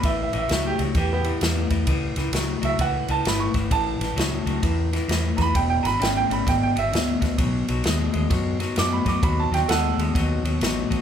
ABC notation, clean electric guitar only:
X:1
M:4/4
L:1/8
Q:"Swing" 1/4=130
K:A
V:1 name="Clean electric guitar" clef=bass
[A,,E,] [A,,E,] [A,,F,] [A,,F,] [A,,E,] [A,,E,] [A,,E,] [A,,E,] | [A,,E,] [A,,E,] [A,,F,] [A,,F,] [A,,E,] [A,,E,] [A,,E,] [A,,E,] | [A,,E,] [A,,E,] [A,,F,] [A,,F,] [A,,E,] [A,,E,] [A,,E,] [A,,E,] | [E,,B,,] [E,,B,,] [E,,C,] [E,,C,] [E,,B,,] [E,,B,,] [E,,B,,] [E,,B,,] |
[B,,F,] [B,,F,] [B,,G,] [B,,G,] [B,,F,] [B,,F,] [B,,F,] [B,,F,] | [B,,F,] [B,,F,] [B,,G,] [B,,G,] [B,,F,] [B,,F,] [B,,F,] [B,,F,] |]